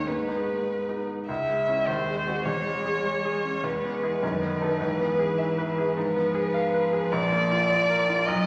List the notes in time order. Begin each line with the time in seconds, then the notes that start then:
0.06 G#2 G#3 B4
0.27 G#3 B3 D#4
0.88 G#3 B3 D#4
1.28 C#2 G#3 E5
1.49 G#3
1.68 C#4 E4
1.87 D#2 C5
2.07 G#3
2.26 C4 F#4
2.46 E2 C#5
2.67 G#3
2.86 G#4
3.06 C#5
3.25 G#4
3.45 C#4
3.64 E2 G#3 B4
3.84 B3
4.03 E4 G#4
4.23 F#2 D#3
4.41 B3
4.61 D#4 A4
4.81 G#2 E3
5.00 B3
5.19 G#4
5.38 E5
5.58 B4
5.78 G#4
5.95 G#2 F3 B4
6.16 B3
6.35 G#4
6.54 F5
6.74 B4
6.93 G#4
7.12 A#1 D5
7.32 A#3
7.51 F4
7.70 D5
7.90 A#4
8.10 F4
8.26 B1 F#3 D#5